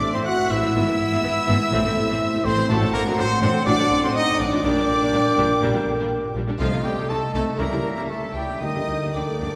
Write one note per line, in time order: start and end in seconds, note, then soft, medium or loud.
0.00 0.06 A1 medium
0.00 0.77 A2 medium
0.00 0.07 A2 medium
0.00 0.06 C3 medium
0.00 0.77 E3 medium
0.00 0.77 A3 medium
0.00 0.06 A3 medium
0.00 0.57 C4 medium
0.00 0.71 C4 medium
0.00 0.13 D4 loud
0.00 0.14 D4 loud
0.00 0.25 C5 medium
0.00 0.12 D5 loud
0.00 0.13 D5 loud
0.00 2.66 E5 medium
0.00 0.14 D6 loud
0.09 0.18 E3 loud
0.09 0.18 C4 loud
0.09 0.41 E4 medium
0.09 0.26 C5 loud
0.09 0.27 C5 loud
0.14 0.19 A2 loud
0.14 0.20 C4 medium
0.14 0.28 C4 loud
0.14 0.19 C6 loud
0.24 0.50 F#4 loud
0.24 0.53 F#4 loud
0.24 0.77 C5 medium
0.24 0.50 F#5 loud
0.24 0.52 F#5 loud
0.24 0.51 F#6 loud
0.37 0.43 A2 medium
0.37 0.42 C3 medium
0.37 0.42 A3 medium
0.42 1.07 E4 medium
0.49 0.55 A1 loud
0.49 0.56 A2 loud
0.49 0.54 E3 loud
0.49 0.54 C4 loud
0.49 2.45 E4 loud
0.49 2.44 E4 loud
0.49 2.41 E5 loud
0.49 2.46 E5 loud
0.49 2.46 E6 loud
0.59 0.67 E3 medium
0.59 0.77 C4 medium
0.59 0.67 C4 medium
0.63 0.68 A2 medium
0.74 0.80 G#1 loud
0.74 0.80 G#2 loud
0.74 1.75 G#2 medium
0.74 0.79 E3 loud
0.74 0.80 B3 loud
0.74 1.71 B3 medium
0.86 0.92 G#2 medium
0.86 0.92 E3 medium
0.86 0.92 B3 medium
0.91 1.56 B3 medium
0.99 1.04 G#1 medium
0.99 1.04 G#2 medium
0.99 1.04 E3 medium
0.99 1.04 G#3 medium
1.08 1.16 G#2 loud
1.08 1.16 E3 loud
1.08 1.16 B3 loud
1.08 1.40 E4 medium
1.23 1.29 G#1 medium
1.23 1.28 G#2 medium
1.23 1.29 E3 medium
1.23 1.29 B3 medium
1.23 1.75 B4 medium
1.41 2.04 E4 medium
1.48 1.54 G#1 loud
1.48 1.53 G#2 loud
1.48 1.53 E3 loud
1.48 1.53 B3 loud
1.57 1.75 B3 medium
1.73 1.78 A1 loud
1.73 1.78 A2 loud
1.73 2.68 A2 loud
1.73 1.78 E3 loud
1.73 1.78 C4 loud
1.73 4.67 C4 loud
1.85 1.90 A2 medium
1.85 1.90 E3 medium
1.85 1.90 C4 medium
1.89 3.65 A3 medium
1.96 2.02 A1 medium
1.96 2.01 A2 medium
1.96 2.02 C3 loud
1.96 2.02 A3 medium
2.06 2.13 A2 loud
2.06 2.36 E4 medium
2.10 2.15 E3 loud
2.10 2.15 C4 loud
2.21 4.67 C5 medium
2.32 2.37 A2 medium
2.32 2.38 C3 medium
2.32 2.38 A3 loud
2.38 2.72 E4 medium
2.44 2.50 A1 loud
2.44 2.49 A2 loud
2.44 2.50 E3 loud
2.44 2.69 C4 loud
2.44 2.56 C4 loud
2.44 2.50 C4 loud
2.44 2.69 C5 loud
2.44 2.70 C5 loud
2.44 2.69 C6 loud
2.54 2.62 A2 medium
2.54 2.62 E3 loud
2.54 2.84 C4 medium
2.54 2.62 C4 loud
2.68 2.75 A1 loud
2.68 2.74 A2 loud
2.68 4.67 A2 medium
2.68 2.75 F#3 loud
2.68 2.93 A3 loud
2.68 2.94 A3 loud
2.68 2.75 D4 loud
2.68 2.77 A4 loud
2.68 2.93 A4 loud
2.68 4.61 F#5 loud
2.68 2.95 A5 loud
2.81 2.86 A2 medium
2.81 2.86 F#3 medium
2.81 2.86 D4 medium
2.85 3.82 C4 medium
2.93 2.99 A1 medium
2.93 2.98 A2 loud
2.93 2.99 D3 medium
2.93 3.18 A#3 loud
2.93 3.05 A#3 loud
2.93 2.99 C4 medium
2.93 3.17 A#4 loud
2.93 3.04 A#4 loud
2.93 3.18 A#5 loud
3.02 3.10 A2 loud
3.02 3.10 F#3 loud
3.02 3.11 D4 loud
3.02 3.33 F#4 medium
3.18 3.23 A1 medium
3.18 3.23 A2 medium
3.18 3.23 F#3 medium
3.18 3.29 C4 loud
3.18 3.40 C4 loud
3.18 3.23 D4 medium
3.18 3.41 C5 loud
3.18 4.14 D5 medium
3.18 3.41 C6 loud
3.34 3.98 F#4 medium
3.41 3.47 A1 loud
3.41 3.47 A2 loud
3.41 3.47 F#3 loud
3.41 3.66 C4 loud
3.41 3.47 D4 loud
3.41 3.65 C5 loud
3.41 3.66 C5 loud
3.41 3.50 C6 loud
3.50 4.47 D4 medium
3.65 3.72 A1 loud
3.65 3.71 A2 loud
3.65 3.71 F#3 loud
3.65 4.67 A3 medium
3.65 4.02 D4 loud
3.65 3.71 D4 loud
3.65 4.06 D4 loud
3.65 4.03 D5 loud
3.65 4.03 D6 loud
3.78 3.83 A2 medium
3.78 3.84 F#3 medium
3.78 3.84 D4 medium
3.83 4.67 C4 medium
3.91 3.96 A1 medium
3.91 3.96 A2 medium
3.91 3.96 D3 medium
3.91 3.96 C4 medium
3.99 4.08 A2 loud
3.99 4.15 C4 loud
3.99 4.30 F#4 medium
3.99 4.15 C5 loud
3.99 4.09 C5 loud
4.03 4.08 F#3 loud
4.03 4.16 C4 loud
4.03 4.08 D4 loud
4.03 4.16 C6 loud
4.14 4.40 D#4 loud
4.14 5.13 D5 loud
4.14 4.40 D#5 loud
4.14 4.40 D#6 loud
4.27 4.32 A2 medium
4.27 4.32 D3 medium
4.27 4.32 C4 medium
4.31 4.66 F#4 medium
4.38 4.45 A1 loud
4.38 4.45 A2 loud
4.38 4.44 F#3 loud
4.38 6.35 D4 loud
4.38 4.45 D4 loud
4.38 6.32 D4 loud
4.38 6.31 D5 loud
4.38 6.32 D5 loud
4.38 6.35 D6 loud
4.48 4.57 A2 medium
4.48 4.57 F#3 loud
4.48 5.45 D4 medium
4.52 4.57 D4 loud
4.64 4.69 A#1 loud
4.64 4.69 A#2 loud
4.64 5.61 A#2 medium
4.64 4.70 G3 loud
4.64 6.43 A#3 loud
4.64 4.70 D4 loud
4.64 6.36 G5 loud
4.76 4.81 A#2 medium
4.76 4.82 G3 medium
4.76 4.82 D4 medium
4.81 5.78 A#3 medium
4.88 4.94 A#1 medium
4.88 4.93 A#2 loud
4.88 4.94 D3 medium
4.88 4.94 A#3 medium
4.98 5.06 A#2 loud
4.98 5.06 G3 loud
4.98 5.06 D4 loud
4.98 5.29 G4 medium
5.13 5.18 A#1 medium
5.13 5.18 A#2 medium
5.13 5.19 G3 medium
5.13 5.19 D4 medium
5.13 6.10 D5 loud
5.30 5.94 G4 medium
5.38 5.43 A#1 loud
5.38 5.43 A#2 loud
5.38 5.43 G3 loud
5.38 5.43 D4 loud
5.62 5.67 A#1 loud
5.62 5.67 A#2 loud
5.62 6.62 A#2 medium
5.62 5.68 G3 loud
5.62 5.68 D4 loud
5.74 5.79 A#2 medium
5.74 5.80 G3 medium
5.74 5.80 D4 medium
5.79 6.62 A#3 medium
5.86 5.91 A#1 medium
5.86 5.91 A#2 medium
5.86 5.93 D3 medium
5.86 5.92 A#3 loud
5.95 6.03 A#2 loud
5.95 6.27 G4 medium
6.00 6.05 G3 loud
6.00 6.04 D4 loud
6.12 6.62 D5 medium
6.23 6.28 A#2 medium
6.23 6.29 D3 medium
6.23 6.29 A#3 medium
6.28 9.50 G4 medium
6.35 6.40 A#1 loud
6.35 6.40 A#2 loud
6.35 6.40 G3 loud
6.35 6.40 D4 loud
6.44 6.62 D4 medium
6.48 6.53 A#2 medium
6.48 6.53 G3 medium
6.48 6.53 D4 loud
6.59 6.64 C2 loud
6.59 6.64 C3 loud
6.59 7.61 C3 medium
6.59 6.70 F3 medium
6.59 6.71 F3 loud
6.59 7.06 A3 medium
6.59 6.65 A3 loud
6.59 6.66 D#4 loud
6.59 6.67 F4 loud
6.59 6.86 F4 loud
6.59 7.05 D#5 medium
6.59 6.83 F5 loud
6.72 6.77 C3 medium
6.72 6.78 A3 medium
6.72 6.78 D#4 medium
6.77 7.61 A3 medium
6.83 6.89 C2 medium
6.83 6.90 C3 medium
6.83 7.09 G3 medium
6.83 6.96 G3 medium
6.83 6.90 G3 medium
6.83 6.90 C4 medium
6.83 7.08 G4 medium
6.83 7.11 G4 medium
6.83 7.10 G5 loud
6.92 7.25 A4 medium
6.97 7.02 C3 loud
6.97 7.03 A3 loud
6.97 7.03 D#4 medium
7.09 7.14 C2 medium
7.09 7.15 C3 medium
7.09 7.60 A3 medium
7.09 7.33 A3 loud
7.09 7.21 A3 medium
7.09 7.15 A3 medium
7.09 7.15 D#4 medium
7.09 7.32 A4 loud
7.09 7.33 A4 loud
7.09 7.57 D#5 medium
7.09 7.61 D#5 medium
7.09 7.17 A5 loud
7.26 7.61 A4 medium
7.33 7.39 C2 loud
7.33 7.39 C3 loud
7.33 7.39 A3 loud
7.33 7.61 A3 loud
7.33 7.45 A3 loud
7.33 7.39 D#4 medium
7.33 7.58 A4 loud
7.33 7.45 A4 loud
7.33 7.42 A5 loud
7.42 7.61 D#4 medium
7.58 7.64 C#2 loud
7.58 7.64 C#3 loud
7.58 8.64 C#3 medium
7.58 8.10 G3 medium
7.58 7.64 G3 loud
7.58 7.94 A#3 medium
7.58 7.96 A#3 loud
7.58 7.64 E4 loud
7.58 7.94 A#4 loud
7.58 7.95 A#4 loud
7.58 8.62 E5 medium
7.58 7.96 A#5 loud
7.71 7.77 C#3 medium
7.71 7.76 G3 medium
7.71 7.77 E4 medium
7.76 8.79 G3 medium
7.84 7.89 C#2 medium
7.84 7.89 C#3 medium
7.84 7.89 E3 medium
7.84 7.89 C#4 medium
7.93 8.01 A#3 medium
7.93 8.02 E4 medium
7.93 8.08 A#4 medium
7.93 8.02 A#4 medium
7.93 8.25 C#5 medium
7.97 8.02 C#3 medium
7.97 8.02 G3 loud
7.97 8.09 A#3 loud
7.97 8.02 A#5 loud
8.08 8.20 A3 medium
8.08 8.61 A3 medium
8.08 8.21 A3 medium
8.08 8.34 A4 medium
8.08 8.64 E5 medium
8.08 8.34 A5 medium
8.23 8.28 C#3 medium
8.23 8.28 E3 medium
8.23 8.28 C#4 medium
8.23 8.64 C#5 medium
8.33 8.40 C#2 medium
8.33 8.40 C#3 medium
8.33 8.60 G3 medium
8.33 8.41 G3 medium
8.33 8.47 G3 medium
8.33 8.40 E4 medium
8.33 8.61 G4 medium
8.33 8.61 G5 loud
8.44 8.64 E4 medium
8.49 8.54 C#3 medium
8.49 8.55 G3 medium
8.49 8.54 E4 medium
8.60 8.67 D2 medium
8.60 8.67 D3 loud
8.60 9.55 D3 medium
8.60 9.13 A#3 medium
8.60 8.68 A#3 medium
8.60 9.13 D#4 medium
8.60 9.14 D#4 medium
8.60 8.68 G4 medium
8.60 9.13 D#5 medium
8.60 9.14 D#5 medium
8.60 9.13 G5 medium
8.60 9.15 D#6 loud
8.75 8.80 D3 medium
8.75 8.81 A#3 medium
8.75 8.80 G4 medium
8.80 9.55 G3 medium
8.89 8.94 D2 medium
8.89 8.94 D3 medium
8.89 8.94 G3 medium
8.89 8.94 D4 medium
8.98 9.07 A#3 medium
8.98 9.07 G4 medium
8.98 9.31 A#4 medium
9.02 9.08 D3 loud
9.13 9.21 D2 medium
9.13 9.21 D3 medium
9.13 9.39 A3 medium
9.13 9.55 A#3 medium
9.13 9.55 D4 medium
9.13 9.55 D5 medium
9.13 9.55 G5 medium
9.13 9.55 D6 loud
9.33 9.55 A#4 medium
9.41 9.46 D2 medium
9.41 9.47 D3 medium
9.41 9.55 A#3 medium
9.51 9.55 G4 medium